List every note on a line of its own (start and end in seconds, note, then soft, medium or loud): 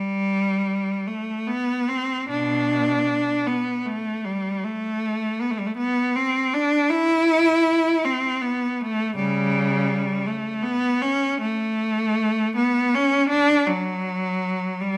0.00 1.04 G3 medium
1.07 1.47 A3 medium
1.48 1.89 B3 medium
1.89 2.30 C4 medium
2.29 3.43 B2 medium
2.29 3.44 D4 medium
3.47 3.86 B3 medium
3.86 4.24 A3 medium
4.25 4.62 G3 medium
4.63 5.42 A3 medium
5.41 5.50 B3 medium
5.51 5.59 A3 medium
5.59 5.68 G3 medium
5.67 5.76 A3 medium
5.77 6.14 B3 medium
6.16 6.53 C4 medium
6.54 6.90 D4 medium
6.90 8.04 E4 loud
8.05 8.43 C4 medium
8.41 8.79 B3 medium
8.81 9.17 A3 loud
9.16 10.23 C#3 medium
9.16 10.25 G3 medium
10.26 10.63 A3 medium
10.63 11.00 B3 loud
11.02 11.40 C#4 loud
11.41 12.54 A3 loud
12.56 12.92 B3 medium
12.95 13.30 C#4 loud
13.29 13.65 D4 loud
13.67 14.80 F#3 medium
14.81 14.97 G3 medium